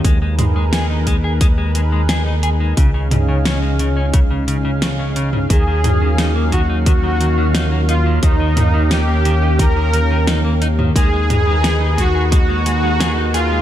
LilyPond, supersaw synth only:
\new Staff \with { instrumentName = "Supersaw synth" } { \time 4/4 \key ees \minor \tempo 4 = 88 r1 | r1 | aes'4. ges'8 ges'4. f'8 | ees'4 g'4 bes'4. r8 |
aes'4. ges'8 ges'4. f'8 | }